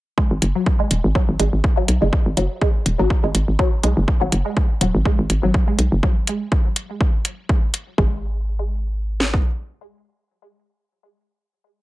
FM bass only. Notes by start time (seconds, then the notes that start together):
0.31 G#1
0.42 F#1
0.91 D#1
1.04 G#1
1.29 G#1
1.40 G#1
1.53 G#1
1.88 B1
2.02 F#1
2.26 G#1
2.37 F#1
2.86 D#1
2.99 G#1
3.24 G#1
3.35 G#1
3.48 G#1
3.84 B1
3.97 F#1
4.21 G#1
4.32 F#1
4.81 D#1
4.95 G#1
5.19 G#1
5.30 G#1
5.43 G#1
5.79 B1
5.92 F#1
7.98 G#1